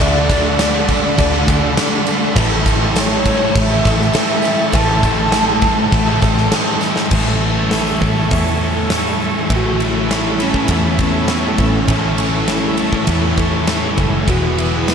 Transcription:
Already playing: A4 D5 F#5
0.00 D2 D3 A3 D4 F#4 D5 B5, kick, tambourine
0.28 D3 A3 D4 F#4, kick, tambourine, crash
0.58 D3 A3 D4 F#4, snare, tambourine, crash
0.73 A3 D4
0.87 D3 A3 D4 F#4, kick, crash
1.03 muted overdriven electric guitar stroke, muted distorted electric guitar stroke
1.17 D2 D3 A3 D4, kick, crash
1.32 A3 D4 F#4
1.47 D2 D3 A3 D4 F#4, kick, tambourine, crash
1.63 muted distorted electric guitar stroke, muted overdriven electric guitar stroke
1.77 D3 A3 D4 F#4, snare, tambourine, crash
2.06 D3 A3 D4 F#4, tambourine, crash
2.20 D4 F#4
2.25 A3 D4
2.35 A1 A2 E3 A3 C#4 A4 E5 A5 C#6, kick, tambourine, crash
2.40 E4
2.66 E3 A3 C#4, kick, tambourine, crash
2.70 E4
2.96 A2 E3 A3 C#4 E4, snare, tambourine, crash
3.00 C#5
3.09 E3 A3
3.25 A2 E3 A3 C#4, kick, crash
3.30 E4
3.41 muted distorted electric guitar stroke, muted overdriven electric guitar stroke
3.54 A1 A2 E3 A3, kick, crash
3.60 E5
3.70 E3 A3 C#4 E4
3.84 A1 A2 E3 A3 C#4, kick, tambourine, crash
3.88 E4
4.00 muted distorted electric guitar stroke, muted overdriven electric guitar stroke, snare
4.13 A2 E3 A3 E5, snare, tambourine, crash
4.18 C#4 E4
4.42 A2 E3 A3 C#4, tambourine, crash
4.47 E4
4.58 E3 A3 C#4 E4
4.63 A3
4.72 A1 A2 E3 A3 C#4 A5, kick, tambourine, crash
4.77 E4
5.03 E3 A3 C#4, kick, tambourine, crash
5.08 E4
5.32 A2 E3 A3 C#4 E4, snare, tambourine, crash
5.48 E3 A3
5.62 A2 E3 A3 C#4 E4, kick, crash
5.77 muted distorted electric guitar stroke, muted overdriven electric guitar stroke
5.91 A1 A2 E3 A3, kick, tambourine, crash
6.06 E3 A3 C#4 E4
6.20 A1 A2 E3 A3 C#4 E4, kick, tambourine, crash
6.36 muted overdriven electric guitar stroke, muted distorted electric guitar stroke, snare
6.51 A2 E3 A3 C#4 E4, snare, tambourine, crash
6.80 A2 E3 A3 C#4 E4, snare, tambourine
6.94 E3 A3 C#4 E4, snare
6.99 A3
7.10 A1 A2 E3 A3 C#4 E4 A4 E5 G#5 C#6, kick, crash
7.27 snare
7.70 A2 E3 A3 C#4 E4 A4, snare, open hi-hat
8.01 A1 A3 C#4 E4 A4, kick
8.30 E2 A2 E3 A3, kick, open hi-hat
8.89 A2 E3 A3 C#4, snare, open hi-hat
8.93 E4 A4
9.21 A3 C#4 E4 A4
9.50 A1 A2 E3 A3 A4 C#5 E5 B5, kick, ride
9.54 C#4 E4 F#4
9.78 E3 A3 C#4 E4, ride
9.83 A3
9.87 E4
10.08 A2 E3 A3 C#4, snare, ride
10.12 E4
10.39 A2 E3 A3 C#4 E4, snare, ride
10.54 kick
10.68 E2 A2 E3 A3 C#4 E4, kick, ride
10.99 A3 B3 C#4 E4, kick, ride
11.28 A2 E3 A3, snare, ride
11.32 C#4 E4
11.58 A1 C#4 E4, kick, ride
11.62 A3
11.88 A1 A2 E3 A3 C#4 E4 A5, kick, ride
12.17 E3 A3 C#4 E4, ride
12.22 A3
12.47 A2 E3 A3 C#4 E4, snare, ride
12.51 E4
12.77 A2 E3 A3 C#4 E4, ride
12.93 kick
13.07 E2 A2 E3 A3 C#4, kick, ride
13.11 E4
13.38 C#4 E4, kick, ride
13.42 A3
13.67 A2 E3 A3 C#4, snare, ride
13.72 E4
13.97 F#1 A3 C#4 E4, kick, ride
14.25 E1 E2 B2 E3 G#3 G#4 B4 E5 B5, kick, ride
14.29 B3 E4 F#4
14.56 B2 E3 B3 E4, ride
14.61 G#3
14.86 E2 B2 E3 G#3 B3 E4, snare, ride

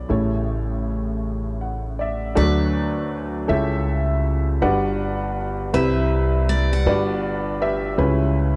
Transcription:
Already playing: B4 C#5 D5
0.09 A1 A2 C#3 G3 E4 A4 C#5
1.61 F#5
1.99 D5 E5
2.35 D2 D3 F#3 A3 D4 F#4 A4 B4 D5
3.48 C#2 C#3 G3 C#4 E4 G4 A4 E5
4.62 G1 G2 G3 D4 F#4 B4 D5 F#5
5.73 C2 C3 G3 C4 E4 B4 E5
6.49 D5
6.73 F#5
6.86 G1 G2 G3 D4 F#4 B4 D5
7.61 G4 B4 E5
7.97 C#2 C#3 G3 C#4 E4 B4

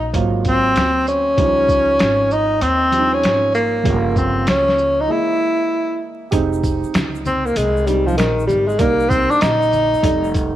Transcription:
Already playing: A#1 F#3 A#3 C#4 D#4 F4
0.13 G#1 F#3 A#3 F4 C5, kick, closed hi-hat
0.45 C4, kick, closed hi-hat, shaker
0.76 D2, snare, closed hi-hat
1.07 C#4, shaker
1.37 C#2 F3 G3 D#4 C5, kick, closed hi-hat
1.68 kick, shaker
1.99 G#1, snare, closed hi-hat
2.31 D#4, shaker
2.61 D#2 C4, closed hi-hat
2.92 F3 G3 D4 C5, closed hi-hat, shaker
2.99 D#4
3.14 C#4
3.23 G#1, snare, closed hi-hat
3.54 A#3, shaker
3.83 G1 C#3 F3 G3 G#3, kick, closed hi-hat
3.91 A#3
4.16 C4, kick, shaker
4.47 C#2 C#4, snare, closed hi-hat
4.68 snare
4.78 shaker
5.01 D#4
5.07 E3 G#3 A#3 E4 D#5
6.31 F1 G#3 C4 D#4 G4, kick, closed hi-hat, shaker
6.53 shaker
6.63 kick, shaker
6.84 muted upright bass stroke, shaker
6.94 C#2, snare, closed hi-hat, low conga, shaker
7.15 shaker
7.25 C4, low conga, shaker
7.46 A#3, shaker
7.56 C2 G#3, closed hi-hat, high conga, shaker
7.77 shaker
7.86 G3 G#3 C4 D#4, closed hi-hat, shaker
8.07 F3, high conga, shaker
8.17 A#1 D#3, snare, closed hi-hat, shaker
8.39 shaker
8.47 G#1 G3, high conga, low conga, shaker
8.68 G#3, shaker
8.78 C2 G3 A#3 D#4 D5, kick, closed hi-hat, shaker
9.00 shaker
9.09 C4, kick, shaker
9.30 D4, muted upright bass stroke, shaker
9.41 A#1 D#4, snare, closed hi-hat, low conga, shaker
9.62 shaker
9.72 low conga, shaker
9.93 muted upright bass stroke, shaker
10.02 F1 G3 A3 D#4 D5, kick, closed hi-hat, high conga, shaker
10.24 shaker
10.34 kick, closed hi-hat, shaker

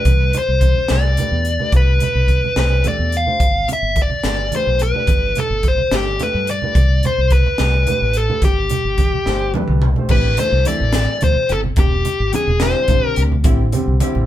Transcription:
Already playing: B4
0.05 C2, kick, closed hi-hat, high conga
0.33 closed hi-hat, low conga
0.38 C5
0.48 C2
0.61 kick, closed hi-hat, high conga
0.76 low conga
0.88 C2 A3 D4, snare, closed hi-hat
0.93 G4 B4 D5
1.05 low conga
1.17 A3 D4 G4 B4, closed hi-hat, low conga
1.32 E2
1.45 closed hi-hat
1.59 A3 D4 G4 B4, low conga
1.72 C2, kick, closed hi-hat, high conga, low conga
1.76 B4
2.00 closed hi-hat, low conga
2.15 C2
2.28 kick, closed hi-hat, low conga
2.44 low conga
2.56 C2 A3 D4 G4 C5, snare, closed hi-hat
2.60 B4
2.72 low conga
2.83 A3 D4 G4 A4, closed hi-hat, high conga, low conga
2.88 D5
2.99 E2
3.12 closed hi-hat
3.17 F5
3.26 A3 D4 G4 C5, low conga
3.40 G1, kick, closed hi-hat, high conga
3.68 closed hi-hat, low conga
3.73 E5
3.83 G1
3.96 kick, closed hi-hat, high conga
4.02 D5
4.10 low conga
4.24 G1 A3 D4 G4 B4, snare, closed hi-hat
4.38 low conga
4.52 A3 D4 G4 B4, closed hi-hat, high conga
4.56 C5
4.67 B1
4.79 B4, closed hi-hat
4.94 A3 D4 G4 D5, low conga
5.07 G1, kick, closed hi-hat, high conga
5.35 A4, closed hi-hat, low conga
5.50 G1
5.63 kick, closed hi-hat, high conga
5.68 C5
5.78 low conga
5.91 G1 A3 D4 G4 A4, snare, closed hi-hat
6.07 low conga
6.19 A3 D4 G4 A4 B4, closed hi-hat, high conga, low conga
6.35 G2
6.47 D5, closed hi-hat
6.62 A3 D4 G4 B4, low conga
6.75 C2, kick, closed hi-hat, high conga
7.03 C5, closed hi-hat, low conga
7.18 C2
7.30 B4, kick, closed hi-hat
7.46 low conga
7.58 C2 A3 D4 G4 B4, snare, closed hi-hat
7.74 low conga
7.86 A3 D4 G4 B4, closed hi-hat, high conga, low conga
8.02 A1
8.13 A4, closed hi-hat
8.28 A3 D4 G4 B4, low conga
8.42 G1 G4, kick, closed hi-hat, high conga
8.58 low conga
8.70 closed hi-hat, low conga
8.85 G1
8.98 kick, closed hi-hat, high conga
9.13 low conga
9.26 G1 A3 D4 G4 C5, snare
9.54 A3 D4 G4 B4 D5, high tom, high conga, low conga
9.68 C2, mid tom
9.82 mid tom
9.96 A3 D4 G4 C5, low conga
10.09 A1 E3 G3 A3 C4 D4 E4 G4 B4, kick, crash, high conga
10.37 E3 A3 D4 A4 C5, closed hi-hat, low conga
10.52 C2
10.65 E3 G3 A3 C4 D4 E4 G4 A4 D5, closed hi-hat, high conga, low conga
10.80 A1, low conga
10.93 G3 C4 E4 G4, snare, closed hi-hat
11.21 D2 C5, closed hi-hat, high conga, low conga
11.36 muted fretless electric bass stroke
11.49 G1 C4 E4 G4 A4, closed hi-hat
11.64 low conga
11.76 E1 G#3 C4 D4 G4, kick, closed hi-hat, high conga
12.05 closed hi-hat, low conga
12.20 G#1
12.33 G#3 C4 D4 G4 G#4, closed hi-hat, high conga, low conga
12.48 E1, low conga
12.60 D3 G3 G#3 C4 D4 E4 G4 C5, snare, closed hi-hat
12.88 G#1 D3 G3 C4 D4, kick, closed hi-hat, high conga, low conga
13.05 A#4, muted fretless electric bass stroke
13.16 D2 C4 D4 G4, closed hi-hat
13.32 low conga
13.43 A1 D3 G3 C4 E4 G4, kick, closed hi-hat, high conga
13.72 D3 G3 C4 G4, closed hi-hat, low conga
13.88 C2
14.00 D3 G3 C4 E4 G4, closed hi-hat, high conga, low conga
14.15 A1, low conga

